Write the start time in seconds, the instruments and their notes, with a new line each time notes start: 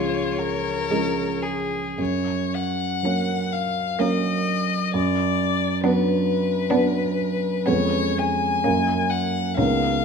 Already playing: grand piano C#2 F3 C#4 G#4, cello G#3, violin F4 C#5
0.38 violin A#4
0.90 grand piano F3 C#4 G#4, cello G#3
1.42 violin G#4
1.98 grand piano F#2, violin C#5
2.55 violin F#5
3.03 grand piano F#3 C#4 A#4, cello A#3, violin C#4
3.52 violin F5
3.99 grand piano F#3 C#4 A#4, cello A#3, violin C#4 D#5
4.94 grand piano F#2, violin D5
5.83 grand piano F#3 D4 B4, cello B3, violin D4 B4
6.70 grand piano F#3 D4 B4, cello B3, violin D4
7.66 grand piano F2 G#3 C#4 B4, cello B3, violin C#4 C#5
8.18 violin G#5
8.64 grand piano F#2 A#3 C#4 A#4, cello A#3, violin C#4
9.10 violin F#5
9.57 grand piano C#2 B3 D#4 A#4, cello A#3, violin C#4 F5